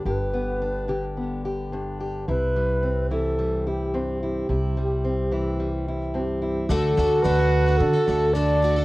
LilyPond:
<<
  \new Staff \with { instrumentName = "Alto flute" } { \time 4/4 \key c \lydian \tempo 4 = 108 b'2 r2 | b'4. a'4 g'4 g'8~ | g'2. g'4 | a'4 b'4 a'4 d''4 | }
  \new Staff \with { instrumentName = "Twelve-string acoustic guitar" } { \time 4/4 \key c \lydian r1 | r1 | r1 | <d a d' fis' a'>8 <a d' fis' a'>8 <d a d' fis' a'>16 <d' fis' a'>8 <d' fis' a'>8 <d' fis' a'>16 <a d' fis' a'>8 <d a d' fis' a'>8 <a d' fis' a'>16 <d' fis' a'>16 | }
  \new Staff \with { instrumentName = "French horn" } { \time 4/4 \key c \lydian r1 | r1 | r1 | fis'2. d'4 | }
  \new Staff \with { instrumentName = "Steel-string acoustic guitar" } { \time 4/4 \key c \lydian << { g'8 b8 d'8 g'8 b8 g'8 d'8 g'8 | e'8 g8 c'8 e'8 g8 e'8 c'8 e'8 | e'8 g8 c'8 e'8 g8 e'8 c'8 e'8 | r1 | } \\ { <g, d>4. d4. g,4 | c4. e4. g,4 | c4. e4. g,4 | r1 | } >> }
  \new Staff \with { instrumentName = "Upright bass" } { \clef bass \time 4/4 \key c \lydian g,,1 | c,1 | c,1 | d,8 d,8 d,4 d16 r16 d,4. | }
>>